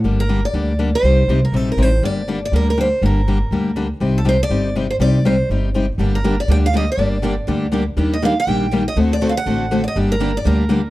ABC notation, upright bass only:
X:1
M:4/4
L:1/8
Q:"Swing" 1/4=242
K:Gm
V:1 name="Upright bass" clef=bass
G,,,4 D,,4 | C,,2 C,,2 B,,,2 A,,,2 | G,,,4 D,,4 | G,,,4 D,,4 |
C,,4 G,,,4 | C,,4 G,,,4 | G,,,4 D,,4 | G,,,4 D,,4 |
E,,4 B,,,4 | D,,4 A,,,4 | G,,,4 D,,4 |]